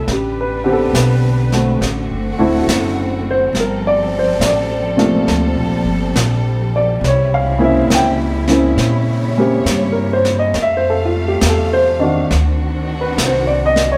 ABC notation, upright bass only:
X:1
M:4/4
L:1/8
Q:"Swing" 1/4=69
K:Cmix
V:1 name="Upright bass" clef=bass
A,,,2 =B,,,2 (3A,,, ^F,,, D,,, F,,,2 | G,,,2 A,,,2 (3D,, B,,, G,,, B,,,2 | C,,2 _D,,2 B,,2 G,,2 | F,,2 E,,2 D,,2 C,,2 |]